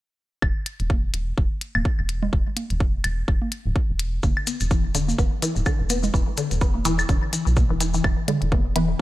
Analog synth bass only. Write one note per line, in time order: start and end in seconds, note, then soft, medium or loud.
0.42 0.53 E1 medium
0.80 1.10 E1 medium
1.14 1.32 E1 medium
1.38 1.48 E1 medium
1.75 1.83 D1 medium
1.99 2.29 E1 medium
2.33 2.43 E1 loud
2.70 3.00 E1 medium
3.04 3.23 E1 medium
3.28 3.38 E1 loud
3.66 3.73 D1 medium
3.89 4.19 E1 medium
4.23 4.34 E1 loud
4.61 4.91 E1 medium
4.95 5.13 E1 medium
5.19 5.29 E1 medium
5.56 5.64 D1 medium
5.80 6.10 E1 medium
6.14 6.24 E1 loud
6.51 6.81 E1 medium
6.85 7.04 E1 medium
7.09 7.19 E1 loud
7.47 7.64 B1 medium
7.70 8.00 E1 medium
8.04 8.15 E1 loud
8.42 8.72 E1 medium
8.76 8.94 E1 medium